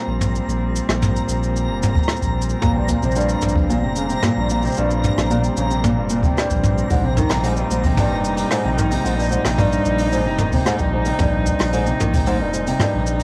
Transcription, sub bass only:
0, 0, Header, 1, 2, 480
1, 0, Start_track
1, 0, Tempo, 535714
1, 435, Time_signature, 4, 2, 24, 8
1, 11854, End_track
2, 0, Start_track
2, 0, Title_t, "Sub bass"
2, 0, Program_c, 0, 38
2, 65, Note_on_c, 0, 34, 93
2, 359, Note_off_c, 0, 34, 0
2, 427, Note_on_c, 0, 34, 98
2, 720, Note_off_c, 0, 34, 0
2, 791, Note_on_c, 0, 34, 97
2, 1082, Note_off_c, 0, 34, 0
2, 1148, Note_on_c, 0, 34, 91
2, 1502, Note_on_c, 0, 29, 98
2, 1516, Note_off_c, 0, 34, 0
2, 1798, Note_off_c, 0, 29, 0
2, 1988, Note_on_c, 0, 34, 97
2, 2281, Note_off_c, 0, 34, 0
2, 2352, Note_on_c, 0, 34, 102
2, 2643, Note_off_c, 0, 34, 0
2, 2712, Note_on_c, 0, 34, 100
2, 3003, Note_off_c, 0, 34, 0
2, 3077, Note_on_c, 0, 34, 86
2, 3437, Note_on_c, 0, 29, 94
2, 3450, Note_off_c, 0, 34, 0
2, 3725, Note_off_c, 0, 29, 0
2, 3911, Note_on_c, 0, 34, 98
2, 4202, Note_off_c, 0, 34, 0
2, 4280, Note_on_c, 0, 34, 99
2, 4567, Note_off_c, 0, 34, 0
2, 4636, Note_on_c, 0, 34, 90
2, 4925, Note_off_c, 0, 34, 0
2, 4991, Note_on_c, 0, 34, 80
2, 5349, Note_on_c, 0, 29, 101
2, 5362, Note_off_c, 0, 34, 0
2, 5641, Note_off_c, 0, 29, 0
2, 5828, Note_on_c, 0, 34, 95
2, 6121, Note_off_c, 0, 34, 0
2, 6190, Note_on_c, 0, 34, 98
2, 6481, Note_off_c, 0, 34, 0
2, 6550, Note_on_c, 0, 34, 94
2, 6842, Note_off_c, 0, 34, 0
2, 6902, Note_on_c, 0, 34, 83
2, 7264, Note_on_c, 0, 29, 96
2, 7277, Note_off_c, 0, 34, 0
2, 7559, Note_off_c, 0, 29, 0
2, 7748, Note_on_c, 0, 34, 100
2, 8041, Note_off_c, 0, 34, 0
2, 8111, Note_on_c, 0, 34, 104
2, 8402, Note_off_c, 0, 34, 0
2, 8469, Note_on_c, 0, 34, 94
2, 8761, Note_off_c, 0, 34, 0
2, 8828, Note_on_c, 0, 34, 90
2, 9191, Note_on_c, 0, 29, 100
2, 9204, Note_off_c, 0, 34, 0
2, 9482, Note_off_c, 0, 29, 0
2, 9676, Note_on_c, 0, 34, 98
2, 9965, Note_off_c, 0, 34, 0
2, 10028, Note_on_c, 0, 34, 106
2, 10321, Note_off_c, 0, 34, 0
2, 10393, Note_on_c, 0, 34, 102
2, 10683, Note_off_c, 0, 34, 0
2, 10753, Note_on_c, 0, 34, 85
2, 11108, Note_on_c, 0, 29, 103
2, 11122, Note_off_c, 0, 34, 0
2, 11401, Note_off_c, 0, 29, 0
2, 11596, Note_on_c, 0, 34, 94
2, 11854, Note_off_c, 0, 34, 0
2, 11854, End_track
0, 0, End_of_file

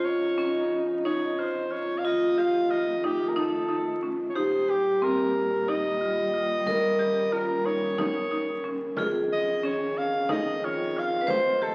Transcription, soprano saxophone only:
0, 0, Header, 1, 2, 480
1, 0, Start_track
1, 0, Tempo, 660793
1, 1483, Time_signature, 7, 3, 24, 8
1, 8534, End_track
2, 0, Start_track
2, 0, Title_t, "Soprano saxophone"
2, 0, Program_c, 0, 64
2, 36, Note_on_c, 0, 73, 88
2, 565, Note_off_c, 0, 73, 0
2, 763, Note_on_c, 0, 73, 86
2, 1010, Note_on_c, 0, 72, 72
2, 1021, Note_off_c, 0, 73, 0
2, 1248, Note_on_c, 0, 73, 81
2, 1259, Note_off_c, 0, 72, 0
2, 1440, Note_on_c, 0, 77, 72
2, 1451, Note_off_c, 0, 73, 0
2, 1490, Note_on_c, 0, 75, 95
2, 1501, Note_off_c, 0, 77, 0
2, 1731, Note_on_c, 0, 77, 97
2, 1742, Note_off_c, 0, 75, 0
2, 1965, Note_on_c, 0, 75, 84
2, 1975, Note_off_c, 0, 77, 0
2, 2216, Note_on_c, 0, 67, 81
2, 2227, Note_off_c, 0, 75, 0
2, 2389, Note_on_c, 0, 70, 52
2, 2400, Note_off_c, 0, 67, 0
2, 2463, Note_on_c, 0, 69, 74
2, 2474, Note_off_c, 0, 70, 0
2, 2934, Note_off_c, 0, 69, 0
2, 3118, Note_on_c, 0, 73, 59
2, 3160, Note_on_c, 0, 72, 94
2, 3171, Note_off_c, 0, 73, 0
2, 3413, Note_on_c, 0, 67, 83
2, 3424, Note_off_c, 0, 72, 0
2, 3661, Note_on_c, 0, 70, 81
2, 3672, Note_off_c, 0, 67, 0
2, 4135, Note_on_c, 0, 75, 100
2, 4146, Note_off_c, 0, 70, 0
2, 5323, Note_on_c, 0, 70, 75
2, 5334, Note_off_c, 0, 75, 0
2, 5562, Note_on_c, 0, 73, 86
2, 5573, Note_off_c, 0, 70, 0
2, 5804, Note_off_c, 0, 73, 0
2, 5812, Note_on_c, 0, 73, 82
2, 6320, Note_off_c, 0, 73, 0
2, 6775, Note_on_c, 0, 75, 98
2, 7012, Note_on_c, 0, 73, 81
2, 7023, Note_off_c, 0, 75, 0
2, 7246, Note_on_c, 0, 77, 97
2, 7257, Note_off_c, 0, 73, 0
2, 7490, Note_on_c, 0, 75, 88
2, 7501, Note_off_c, 0, 77, 0
2, 7734, Note_on_c, 0, 73, 81
2, 7745, Note_off_c, 0, 75, 0
2, 7982, Note_on_c, 0, 77, 88
2, 7993, Note_off_c, 0, 73, 0
2, 8206, Note_off_c, 0, 77, 0
2, 8210, Note_on_c, 0, 72, 100
2, 8446, Note_on_c, 0, 69, 84
2, 8457, Note_off_c, 0, 72, 0
2, 8534, Note_off_c, 0, 69, 0
2, 8534, End_track
0, 0, End_of_file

